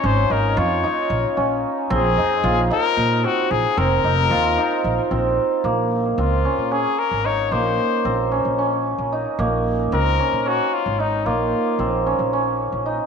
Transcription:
<<
  \new Staff \with { instrumentName = "Trumpet" } { \time 7/8 \key bes \minor \tempo 4 = 112 c''8 bes'8 des''2 r8 | aes'4. bes'4 ges'8 aes'8 | bes'2. r8 | r4 f'4 aes'8 bes'8 des''8 |
c''4. r2 | r4 bes'4 ges'8 f'8 ees'8 | f'4. r2 | }
  \new Staff \with { instrumentName = "Hammered dulcimer" } { \time 7/8 \key bes \minor des'8 ees'8 f'8 ees'4 des'4 | c'8 ees'8 f'8 ees'4 c'4 | c'8 ees'8 f'8 ees'4 c'4 | bes4 c'8 des'8 des'4 ees'8 |
bes4 c'8 des'8 des'4 ees'8 | bes4 c'8 des'8 des'4 ees'8 | bes4 c'8 des'8 des'4 ees'8 | }
  \new Staff \with { instrumentName = "Upright bass" } { \clef bass \time 7/8 \key bes \minor aes,,8 aes,,8 f,8 r8 bes,,16 r16 bes,,8 r8 | bes,,8 f,8 bes,,8 r8 bes,8 r8 bes,,16 r16 | f,,8 f,,8 ees,8 r8 bes,,16 r16 bes,,8 r8 | bes,,4 des,8 r16 bes,8 r8 aes,,8. |
bes,,8 r8 bes,,8. bes,,4 bes,,8 r16 | bes,,4 des,8 r16 bes,8 r8 aes,,8. | bes,,8 r8 bes,,8. bes,,4 bes,,8 r16 | }
>>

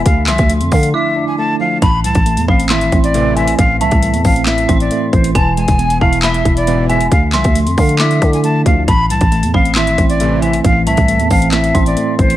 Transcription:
<<
  \new Staff \with { instrumentName = "Synth bell" } { \time 4/4 \key a \minor \tempo 4 = 136 r8 c'''4. d'''4 r4 | a''4. b''8 c'''4. gis''8 | r8 a''2 c'''4. | gis''4. a''8 b''4. gis''8 |
r8 c'''4. d'''4 r4 | a''4. b''8 c'''4. gis''8 | r8 a''2 c'''4. | }
  \new Staff \with { instrumentName = "Flute" } { \time 4/4 \key a \minor f''8 e''4 f''8 e''8. gis''16 a''8 f''8 | b''8 a''4 f''8 e''8. d''8. e''8 | f''8 e''4 f''8 e''8. d''8. c''8 | a''8 gis''4 f''8 e''8. d''8. e''8 |
f''8 e''4 f''8 e''8. gis''16 a''8 f''8 | b''8 a''4 f''8 e''8. d''8. e''8 | f''8 e''4 f''8 e''8. d''8. c''8 | }
  \new Staff \with { instrumentName = "Tine electric piano" } { \time 4/4 \key a \minor d8 f8 a8 d'8 e'8 d'8 a8 f8 | a,8 e8 a8 c'8 e'8 c'8 a8 e8 | a,8 e8 a8 c'8 e'8 c'8 a8 e8 | e8 gis8 b8 e'8 e''8 e'8 b8 gis8 |
d8 f8 a8 d'8 e'8 d'8 a8 f8 | a,8 e8 a8 c'8 e'8 c'8 a8 e8 | a,8 e8 a8 c'8 e'8 c'8 a8 e8 | }
  \new Staff \with { instrumentName = "Analog polysynth" } { \clef bass \time 4/4 \key a \minor r1 | r2. <a, c e>8. r16 | r1 | r2. <gis, b, e>8. r16 |
r1 | r2. <a, c e>8. r16 | r1 | }
  \new Staff \with { instrumentName = "808-style bass" } { \clef bass \time 4/4 \key a \minor d,8 c,16 d,8 f,16 d8 r2 | a,,8 c,16 a,,8 e,16 a,,8 gis,,8 a,,4. | a,,8 c,16 c,8 e,16 a,,4 a,,8 r8 a,,8 | e,,8. e,,8. e,,4 e,,4. |
d,8 c,16 d,8 f,16 d4 d4 d,8 | a,,8 c,16 a,,8 e,16 a,,8 gis,,8 a,,4. | a,,8 c,16 c,8 e,16 a,,4 a,,8 r8 a,,8 | }
  \new DrumStaff \with { instrumentName = "Drums" } \drummode { \time 4/4 <hh bd>8 <hc hh sn>16 <hh bd>16 hh16 hh16 <hho bd>16 hh16 r4 r4 | <hh bd>8 hh16 <hh bd>16 hh16 hh16 bd16 hh16 <hc hh sn>16 hh16 <hh bd>16 hh16 hh8 hh16 hh16 | <hh bd>8 hh16 <hh bd>16 hh16 hh16 <hho bd>16 hh16 <hc hh sn>16 hh16 <hh bd>16 hh16 hh8 <hh bd>16 hh16 | <hh bd>8 hh16 <hh bd>16 hh16 hh16 bd16 hh16 <hc hh sn>16 hh16 <hh bd>16 hh16 hh8 hh16 hh16 |
<hh bd>8 <hc hh sn>16 <hh bd>16 hh16 hh16 <hho bd>16 hh16 <hc hh sn>16 hh16 <hh bd>16 hh16 hh8 <hh bd>8 | <hh bd>8 hh16 <hh bd>16 hh16 hh16 bd16 hh16 <hc hh sn>16 hh16 <hh bd>16 hh16 hh8 hh16 hh16 | <hh bd>8 hh16 <hh bd>16 hh16 hh16 <hho bd>16 hh16 <hc hh sn>16 hh16 <hh bd>16 hh16 hh8 <hh bd>16 hh16 | }
>>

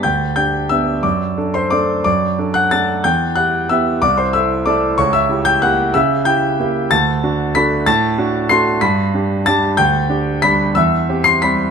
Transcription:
\new Staff \with { instrumentName = "Grand piano" } { \time 3/4 \key g \major \tempo 4 = 185 << { <g'' g'''>4 <g'' g'''>4 <e'' e'''>4 | <d'' d'''>4. <c'' c'''>8 <d'' d'''>4 | <d'' d'''>4. <fis'' fis'''>8 <a'' a'''>4 | <g'' g'''>4 <fis'' fis'''>4 <e'' e'''>4 |
<d'' d'''>8 <c'' c'''>8 <e'' e'''>4 <d'' d'''>4 | <cis'' cis'''>8 <e'' e'''>4 <g'' g'''>8 <fis'' fis'''>4 | <e'' e'''>4 <g'' g'''>8 r4. | <a'' a'''>2 <b'' b'''>4 |
<a'' a'''>2 <c''' c''''>4 | <b'' b'''>2 <a'' a'''>4 | <g'' g'''>2 <b'' b'''>4 | <e'' e'''>4. <c''' c''''>8 <b'' b'''>4 | } \\ { d,4 <d' g'>4 <b d' g'>4 | fis,4 <d' a'>4 <a d' a'>4 | fis,4 <d' a'>4 <a d' a'>4 | e,4 <e' g'>4 <b e' g'>4 |
c,4 <e' a'>4 <a e' a'>4 | cis,4 <e' g'>4 <ais e' g'>4 | cis4 <e' g'>4 <ais e' g'>4 | d,4 <d' fis'>4 <a d' fis'>4 |
a,4 <d' fis'>4 <a d' fis'>4 | g,4 <d' g'>4 <g d' g'>4 | d,4 <d' g'>4 <g d' g'>4 | e,4 <c' g'>4 <g c' g'>4 | } >> }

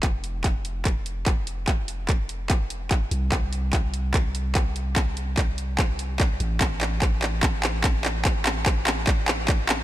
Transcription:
<<
  \new Staff \with { instrumentName = "808-style bass" } { \clef bass \time 4/4 \key a \minor \tempo 4 = 146 f,,1~ | f,,2.~ f,,8 c,8~ | c,1~ | c,2.~ c,8 a,,8~ |
a,,1~ | a,,1 | }
  \new DrumStaff \with { instrumentName = "Drums" } \drummode { \time 4/4 <hc hh bd>8 hh8 <hc hh bd>8 hh8 <hc hh bd>8 hh8 <hc hh bd>8 hh8 | <hc hh bd>8 hh8 <hc hh bd>8 hh8 <hc hh bd>8 hh8 <hc hh bd>8 hh8 | <hc hh bd>8 hh8 <hc hh bd>8 hh8 <hc hh bd>8 hh8 <hc hh bd>8 hh8 | <hc hh bd>8 hh8 <hc hh bd>8 hh8 <hc hh bd>8 hh8 <hc hh bd>8 hh8 |
<hc hh bd>8 <hc hh>8 <hc hh bd>8 <hc hh>8 <hc hh bd>8 <hc hh>8 <hc hh bd>8 <hc hh>8 | <hc hh bd>8 <hc hh>8 <hc hh bd>8 <hc hh>8 <hc hh bd>8 <hc hh>8 <hc hh bd>8 <hc hh>8 | }
>>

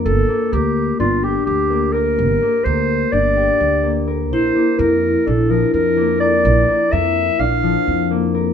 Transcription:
<<
  \new Staff \with { instrumentName = "Clarinet" } { \time 9/8 \key bes \lydian \tempo 4. = 84 a'4 g'4 f'8 g'8 g'4 bes'8~ | bes'4 c''4 d''2 r8 | c''4 bes'4 a'8 bes'8 bes'4 d''8~ | d''4 e''4 f''2 r8 | }
  \new Staff \with { instrumentName = "Vibraphone" } { \time 9/8 \key bes \lydian r1 r8 | r1 r8 | e'1~ e'8~ | e'1~ e'8 | }
  \new Staff \with { instrumentName = "Harp" } { \time 9/8 \key bes \lydian r8 bes8 bes'4 d'8 g'4 bes8 bes'8 | r8 bes8 bes'4 d'8 g'4 bes8 bes'8 | r8 bes8 bes'4 d'8 f4 bes8 bes'8 | r8 bes8 bes'4 d'8 f4 bes8 bes'8 | }
  \new Staff \with { instrumentName = "Upright bass" } { \clef bass \time 9/8 \key bes \lydian g,,8 r8 d,4 g,,4 d,4. | g,,8 r8 d,4 g,,4 d,4. | bes,,8 r8 f,4 bes,,4 f,4. | bes,,8 r8 f,4 bes,,4 f,4. | }
>>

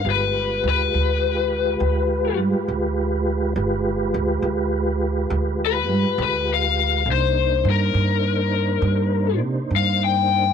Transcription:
<<
  \new Staff \with { instrumentName = "Lead electric guitar" } { \time 12/8 \key g \phrygian \tempo 4. = 68 b'4 b'2. r2 | r2. r8 b'4 b'8 f''4 | c''4 bes'2. r8 f''8 g''4 | }
  \new Staff \with { instrumentName = "Tonewheel organ" } { \time 12/8 \key g \phrygian <aes f' g' b'>1. | <aes f' g' b'>1. | <bes d' ees' c''>1. | }
  \new Staff \with { instrumentName = "Upright bass" } { \clef bass \time 12/8 \key g \phrygian g,,4 d,8 d,4. d,4 g,16 r16 d,4. | g,,4 d,8 d,4. d,4 g,16 r16 d,4. | c,4 g,8 g,4. g,4 c16 r16 g,4. | }
>>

